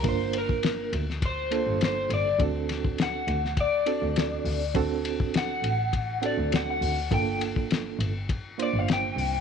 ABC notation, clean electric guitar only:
X:1
M:4/4
L:1/16
Q:1/4=102
K:Gm
V:1 name="Clean electric guitar"
c2 B4 z2 c4 c2 d2 | z4 ^f4 d8 | z4 ^f6 d2 f f3 | g2 z8 d f g4 |]